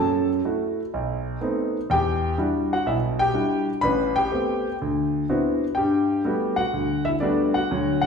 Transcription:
grand piano
Already playing: F#2 F#3 A4 A5
0.45 A3 E4 F#4
0.94 B1
1.41 A3 B3 C4 D#4
1.90 E2 G4 G5
2.38 G3 D4 E4 F#4
2.73 F#4 F#5
2.86 B1 B2 E4 E5
3.19 G4 G5
3.34 G3 D4 E4 F#4
3.81 A1 B4 B5
4.16 G4 G5
4.32 A3 B3 C4 G4
4.81 D2
5.29 B3 C4 D4 E4 F#4
5.75 G2 G4 G5
6.25 G3 A3 B3 F#4
6.56 F#4 F#5
6.73 D2
7.05 E4 E5
7.20 G3 A3 B3 D4 F#4 D5
7.54 F#4 F#5
7.71 D2 F#3
8.02 F#5

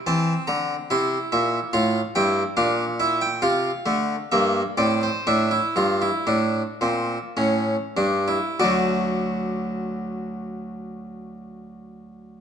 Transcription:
harpsichord
0.07 E3 C4 A5
0.47 D3 A#5
0.90 C3 E4 C6
1.32 A#2 E5
1.73 A2 F4 F5
2.15 G2 E4 G5
2.57 A#2 D4 F5
3.00 E4 E5
3.21 G5
3.42 C3 F4 F5
3.86 D3 A3
4.32 G2 A#3 E5
4.77 A2 C4 D5
5.03 C5
5.27 A2 D4 E5
5.51 E4
5.76 G2 F4
6.02 E4
6.27 A2 D4
6.81 A#2 C4
7.37 A2 C#4
7.97 G2 D4
8.28 E4
8.60 D2 F#3 A3 F#4 D5

